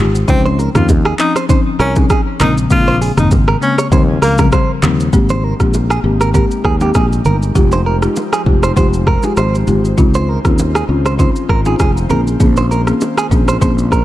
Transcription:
Already playing: G#1 G#3 D#4 F4
0.00 G4
0.15 shaker
0.28 C#2 F3 C4 C#4 D#4, kick, low conga, shaker
0.46 C5, low bongo
0.59 A#4, high bongo, low bongo, shaker
0.75 D#2 F3 C4 C#4 D#4 F4, cross-stick, mid tom, shaker
0.89 kick, high bongo, low bongo, shaker
1.05 G#4, cross-stick
1.19 F3 C4 C#4 D#4, clap, shaker
1.36 C5, cross-stick, high bongo, shaker
1.49 F3 C4 C#4 D#4 C5, kick, low conga, shaker
1.79 C2 C#4 A#4, cross-stick, shaker
1.96 F3 C4 C#4 D#4 G#4, kick, low bongo, shaker
2.10 G#4, kick, cross-stick, high bongo, shaker
2.40 A#1 C#3 G#3 A#3 C4 D#4 A#4, clap, low conga, shaker
2.58 shaker
2.70 A#1 C#3 G#3 A#3 C4 F4, kick, low conga, shaker
2.88 C5, low bongo
3.01 G#4, open hi-hat, high bongo, low bongo, shaker
3.17 G#1 C#3 G#3 A#3 C4 D#4, cross-stick, mid tom, shaker
3.31 kick, high bongo, low bongo, shaker
3.48 A#4, cross-stick
3.61 C#3 G#3 A#3 C4 C#4, shaker
3.78 C#5, cross-stick, high bongo, shaker
3.92 D#2 C#3 F3 G3 C4 C5, kick, low conga, shaker
4.22 C#2 A#3 A#4, cross-stick, open hi-hat, shaker
4.38 C#3 F3 G3 C4 A#4, kick, cross-stick, low bongo, shaker
4.52 C5, kick, cross-stick, high bongo, shaker
4.82 D#2 C#3 F3 G3 C4, clap, low conga, shaker
5.00 shaker
5.13 G#1 C3 G#3 A#3 C4 D#4 G4, kick, low conga, shaker
5.29 C5, low bongo, shaker
5.44 A#4
5.60 A#1 G#3 A#3 C4 G4, kick, cross-stick, shaker
5.74 high bongo, low bongo, shaker
5.90 G#4, cross-stick, shaker
6.04 G#1 G#3 A#3 C4 G4
6.21 A#4, cross-stick, shaker
6.34 G#3 A#3 C4 G4 A#4, kick, low conga, shaker
6.51 shaker
6.65 D#2 G#4, kick, cross-stick
6.81 G#3 A#3 C4 G4, low bongo, shaker
6.94 A#1 G#4, kick, cross-stick, high bongo, shaker
7.13 shaker
7.25 G1 A#4, low conga, shaker
7.43 shaker
7.55 F1 F3 G#3 D#4 F4 G4 C5, kick, low conga, shaker
7.72 C5, low bongo, shaker
7.86 A#4
8.02 G#3 D#4 F4 G4, cross-stick, shaker
8.16 high bongo, low bongo, shaker
8.33 G#4, cross-stick, shaker
8.46 F1 G#3 D#4 F4 G4, kick
8.63 C5, cross-stick, shaker
8.76 F1 G#3 D#4 F4 G4 C5, kick, low conga, shaker
8.93 shaker
9.07 A#4, kick, cross-stick
9.23 G#3 D#4 F4 G4 G#4, low bongo, shaker
9.37 G#1 C5, cross-stick, high bongo, shaker
9.55 shaker
9.67 G#1 G#3 D#4 F4 G4, low conga, shaker
9.85 shaker
9.97 C#2 D#3 C4 C#4 D#4 F4, kick, low conga, shaker
10.14 C5, low bongo, shaker
10.29 A#4
10.45 D#2 C4 C#4 D#4 F4, kick, cross-stick, shaker
10.59 high bongo, low bongo, shaker
10.75 G#4, cross-stick, shaker
10.88 C#2 C4 C#4 D#4 F4
11.06 C5, cross-stick, shaker
11.19 C4 C#4 D#4 F4 C5, kick, low conga, shaker
11.36 shaker
11.49 G#1 A#4, kick, cross-stick
11.65 C4 C#4 D#4 F4 G#4, low bongo, shaker
11.79 F1 G#4, kick, cross-stick, high bongo, shaker
11.97 shaker
12.10 A#1 A#3 C4 C#4 G#4 A#4, low conga, shaker
12.27 shaker
12.40 A#1 A#3 C4 C#4 G#4, kick, low conga, shaker
12.57 C5, low bongo, shaker
12.71 A#4, high bongo, shaker
12.87 A#3 C4 C#4 G#4, cross-stick, shaker
13.01 high bongo, low bongo, shaker
13.18 G#4, cross-stick, shaker
13.31 A#1 A#3 C4 C#4 G#4, kick, shaker
13.48 C5, cross-stick, high bongo, shaker
13.61 A#1 A#3 C4 C#4 G#4 C5, kick, low conga, shaker
13.78 shaker
13.92 A#4, kick, cross-stick, shaker

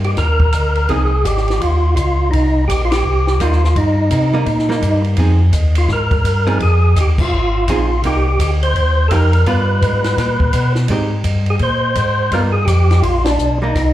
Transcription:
Already playing: G2 A#3 D#4 G4
0.04 G4, ride
0.17 D#2 A#4, kick, snare, ride
0.40 kick
0.52 D2, kick, hi-hat pedal, ride
0.75 ride
0.89 C2 F3 C4 D#4 G#4, kick, ride
1.25 G#1 G4, kick, hi-hat pedal, ride
1.37 snare
1.48 snare, ride
1.60 D#2 F4, kick, ride
1.96 C#2 F4, kick, hi-hat pedal, ride
2.31 C2 D#4, kick, ride
2.68 A#1 G4, kick, hi-hat pedal, ride
2.85 F4
2.91 G4, snare, ride
3.05 C2
3.27 snare
3.40 D#2 G3 A#3 D#4 F4, kick, hi-hat pedal, ride
3.52 snare
3.64 snare
3.76 G2 D#4, kick, ride
4.10 C3, kick, hi-hat pedal, ride
4.33 G3 A#3 D#4
4.46 A#2, kick, ride
4.59 snare
4.69 G3 A#3 D#4, snare
4.82 G2, kick, hi-hat pedal, ride
5.04 ride
5.16 F2 F3 C4 D#4 G#4, kick, ride
5.53 D#2, kick, hi-hat pedal, ride
5.75 F4, ride
5.88 G#2, kick, snare
5.92 A#4
6.11 kick, ride
6.24 G2, kick, hi-hat pedal, ride
6.47 F3 C4 D#4 G#4, ride
6.60 F2 G#4, kick, ride
6.96 D#2, kick, hi-hat pedal, ride
7.00 G4
7.18 F4, kick, crash
7.31 G#1
7.68 A#1 F3 C4 D#4 F4 G#4, kick, hi-hat pedal, ride
8.03 C2 A#3 D#4 G4, kick, ride
8.28 G4
8.39 D2 G4, kick, hi-hat pedal, ride
8.63 C5, ride
8.75 D#2, kick, ride
9.08 F2 A#3 D#4 G4 A4, kick, hi-hat pedal, ride
9.12 A#4
9.33 ride
9.46 G2 G3 B3 F4 B4, kick, ride
9.81 G#2, kick, hi-hat pedal, ride
10.04 snare, ride
10.18 A#2, kick, snare, ride
10.40 kick
10.53 B2, kick, hi-hat pedal, ride
10.75 snare
10.88 G#2 G#3 C4 D#4 G4, kick, ride
11.24 G2, kick, hi-hat pedal, ride
11.46 ride
11.50 G#4
11.59 A#2 C5, kick, ride
11.95 G#2, kick, hi-hat pedal, ride
12.31 G2 G3 B3 F4 A#4, kick, ride
12.52 G#4
12.65 F2 G4, kick, hi-hat pedal, ride
12.91 snare, ride
13.02 A#1 F4, kick, ride
13.24 D4, snare, ride
13.39 B1, hi-hat pedal
13.62 G3 A#3 D#4
13.75 C2, kick, snare, ride

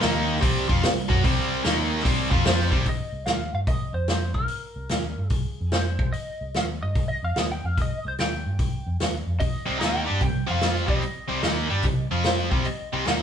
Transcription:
0.01 D#2 D#3 A#3 D#4, snare, open hi-hat
0.36 snare
0.41 C2 C3 G3 C4, kick, open hi-hat
0.68 F2 F3 C4 F4, kick
0.82 C2 C3 G3, snare, open hi-hat
1.08 F#2 F#3 C#4 F#4, kick
1.24 C2 C3 G3 C4, kick, open hi-hat
1.64 D#2 D#3 A#3 D#4, snare, open hi-hat
1.99 snare
2.04 C2 C3 G3 C4, kick, open hi-hat
2.31 F2 F3 C4 F4, kick
2.45 F2 F3 C4 F4 C5, snare, open hi-hat
2.71 C2 C3 G3 C4, kick
2.86 D#5, kick, open hi-hat
3.12 C2
3.26 D#2 F5, snare, open hi-hat
3.53 G2 F5
3.67 C2 D#5, kick, open hi-hat
3.93 F2 C5
4.08 C5, snare, open hi-hat
4.34 C2 A#4, kick
4.48 open hi-hat
4.76 C2
4.89 D#2, snare, open hi-hat
5.18 G2
5.30 C2 G#4, kick, open hi-hat
5.61 F2
5.72 C5, snare, open hi-hat
5.99 C2, kick
6.13 D#5, muted fingered electric bass stroke, open hi-hat
6.41 C2
6.54 D#2 F5, snare, open hi-hat
6.83 G2 D#5
6.95 C2, kick, open hi-hat
7.08 D#5
7.23 F2 F5
7.36 D#2 D#5, snare, open hi-hat
7.51 G5
7.64 F2 F5
7.78 muted fingered electric bass stroke, kick, open hi-hat
7.82 D#5
8.05 C2 C5
8.18 D#2 G5, snare, open hi-hat
8.46 G2
8.59 C2, kick, open hi-hat
8.87 F2
9.00 D#2, snare, open hi-hat
9.26 F2
9.40 D#5, muted fingered electric bass stroke, muted overdriven electric guitar stroke, kick, open hi-hat
9.66 C2 C3 G3 C4
9.79 D#2 D#3 A#3 D#4 G5, snare, open hi-hat
10.05 G3 D4 G4
10.10 G2
10.20 C2 C3 G3 G5, kick, open hi-hat
10.47 F2 F3 C4 F4 F5
10.61 snare, open hi-hat
10.87 C2 C3 G3 C4 D#5, kick
11.02 muted overdriven electric guitar stroke, muted fingered electric bass stroke, open hi-hat
11.28 C2 C3 G3 C4
11.42 D#2 D#3 A#3 D#4, snare, open hi-hat
11.69 G2 G3 D4 G4
11.83 C2 C3 G3, kick, open hi-hat
12.11 F2 F3 C4 F4
12.24 C5, snare, open hi-hat
12.51 C2 C3 G3 C4, kick
12.65 D#5, muted overdriven electric guitar stroke, muted fingered electric bass stroke, open hi-hat
12.93 C2 C3 G3 C4
13.06 D#2 D#3 A#3 D#4 F5, snare, open hi-hat

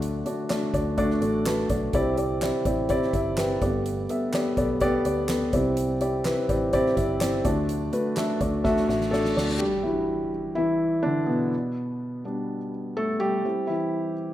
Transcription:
Already playing: D2 D3 F#3 A3 D4 F#4 D5
0.02 closed hi-hat
0.25 A3 D4 F#4 D5, closed hi-hat
0.49 A3 D4 F#4 D5, snare, clap, closed hi-hat
0.73 D2 A3 D4 F#4 D5, kick, closed hi-hat
0.97 A3 D4 F#4 D5, kick, closed hi-hat
1.10 snare
1.21 A1 A3 D4 F#4 A4, closed hi-hat
1.46 A3 D4 F#4 B4, snare, clap, closed hi-hat
1.69 B1 A3 D4 F#4 D5, kick, closed hi-hat
1.93 C2 C3 G3 C4 E4 G4 D5, kick, closed hi-hat
2.17 C4 E4 G4 D5, closed hi-hat
2.41 C4 E4 G4 D5, snare, clap, closed hi-hat
2.65 A1 C4 E4 G4 D5, kick, closed hi-hat
2.89 C4 E4 G4 D5, kick, closed hi-hat
3.02 snare
3.13 G1 C4 E4 G4 E5, kick, closed hi-hat
3.37 C4 E4 G4 B4, snare, clap, closed hi-hat
3.61 G1 G2 A3 B3 G4 A4 D5, kick, closed hi-hat
3.86 closed hi-hat
4.09 B3 G4 A4 E5, closed hi-hat
4.33 B3 G4 A4 D5, snare, clap, closed hi-hat
4.57 B1 B3 G4 A4 D5, kick, closed hi-hat
4.80 B3 G4 A4 D5, kick, closed hi-hat
5.05 D2 B3 G4 A4 D5, closed hi-hat
5.29 B3 G4 A4 B4, snare, clap, closed hi-hat
5.53 C2 C3 G3 C4 E4 G4 D5, kick, closed hi-hat
5.77 closed hi-hat
6.00 C4 E4 G4 D5, closed hi-hat
6.25 C4 E4 G4 B4, snare, clap, closed hi-hat
6.49 A1 C4 E4 G4 D5, kick, closed hi-hat
6.73 C4 E4 G4 D5, kick, closed hi-hat
6.86 snare
6.96 G1 C4 E4 G4 E5, kick, closed hi-hat
7.20 C4 E4 G4 D5, snare, clap, closed hi-hat
7.44 D2 D3 F#3 A3 D4 F#4 D5, kick, closed hi-hat
7.69 closed hi-hat
7.92 A3 D4 F#4 B4, closed hi-hat
8.16 A3 D4 F#4 E5, snare, clap, closed hi-hat
8.40 D2 A3 D4 F#4 D5, kick, closed hi-hat
8.64 A3 D4 F#4 E5, kick, snare, reverse cymbal
8.77 snare
8.88 A1 A3 D4 F#4 E5, snare
9.01 snare
9.11 A3 D4 F#4 A4 D5, snare
9.25 snare
9.36 D2 A3 D4 F#4 D5, snare
9.49 snare
9.58 G3 G4, impact
9.83 E3 G3 D4 E4 F#4
10.55 E3 E4
11.03 D3 D4
11.26 B2 B3
12.24 G3 B3 D4
12.97 A3 A4
13.20 G3 G4
13.44 G3 C4 E4
13.67 E3 E4

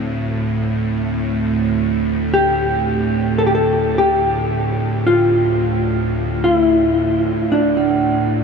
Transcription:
Already playing: D2 A2 C4
2.34 G4
3.38 A4
3.47 G4
3.55 A4
3.98 G4
5.07 F4
6.44 F4
6.55 E4
7.52 D4
7.77 D4

